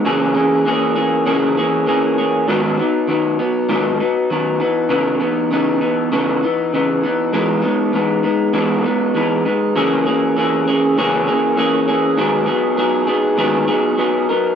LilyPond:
\new Staff \with { instrumentName = "Clean electric guitar" } { \time 4/4 \key gis \minor \tempo 4 = 99 <fis, cis e ais cis' gis'>8 <e ais cis' gis'>8 <e ais cis' gis'>8 <e ais cis' gis'>8 <fis, cis e ais cis' gis'>8 <e ais cis' gis'>8 <e ais cis' gis'>8 <e ais cis' gis'>8 | <gis, dis fis b dis'>8 <fis b dis'>8 <dis fis b dis'>8 <fis b dis'>8 <gis, dis fis b dis'>8 <fis b dis'>8 <dis fis b dis'>8 <e b dis'>8 | <cis e b dis'>8 <e b dis'>8 <cis e b dis'>8 <e b dis'>8 <cis e b dis'>8 <e b dis'>8 <cis e b dis'>8 <e b dis'>8 | <e gis b dis'>8 <gis b dis'>8 <e gis b dis'>8 <gis b dis'>8 <e gis b dis'>8 <gis b dis'>8 <e gis b dis'>8 <gis b dis'>8 |
<fis, cis e ais cis' gis'>8 <e ais cis' gis'>8 <e ais cis' gis'>8 <e ais cis' gis'>8 <fis, cis e ais cis' gis'>8 <e ais cis' gis'>8 <e ais cis' gis'>8 <e ais cis' gis'>8 | <gis, dis fis b dis' gis'>8 <fis b dis' gis'>8 <fis b dis' gis'>8 <fis b dis' gis'>8 <gis, dis fis b dis' gis'>8 <fis b dis' gis'>8 <fis b dis' gis'>8 <fis b dis' ais'>8 | }